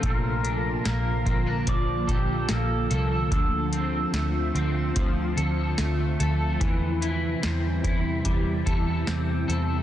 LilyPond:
<<
  \new Staff \with { instrumentName = "Pedal steel guitar" } { \time 4/4 \key bes \lydian \tempo 4 = 73 bes'4 bes'4 d''8 g'8 a'4 | a'2.~ a'8 r8 | r1 | }
  \new Staff \with { instrumentName = "Clean electric guitar" } { \time 4/4 \key bes \lydian bes,8 d'8 bes8 c'16 d'16 f8 a'8 bes8 a'8 | d8 c'8 a8 c'8 f8 a'8 a8 a'8 | e8 e'8 c'8 e'8 g8 a'8 c'8 a'8 | }
  \new Staff \with { instrumentName = "Ambient pad" } { \clef bass \time 4/4 \key bes \lydian << { <bes f'>1 | <c' f'>1 | <g e'>1 | } \\ { <d f>1~ | <d f>1 | <c e>1 | } >> }
  \new Staff \with { instrumentName = "Picked electric bass" } { \clef bass \time 4/4 \key bes \lydian bes,,4 bes,,8 bes,,8 bes,,8 bes,,8 bes,,8 c,8 | d,4 d,8 d,8 d,8 d,8 d,8 d,8 | e,4 e,8 e,8 e,8 e,8 e,8 e,8 | }
  \new DrumStaff \with { instrumentName = "Drums" } \drummode { \time 4/4 <hh bd>8 hh8 <hh sn>8 <hh bd>8 <hh bd>8 <hh bd>8 <hh sn>8 hh8 | <hh bd>8 hh8 <hh sn>8 hh8 <hh bd>8 hh8 <hh sn>8 hh8 | <hh bd>8 hh8 <hh sn>8 <hh bd>8 <hh bd>8 <hh bd>8 <hh sn>8 hh8 | }
>>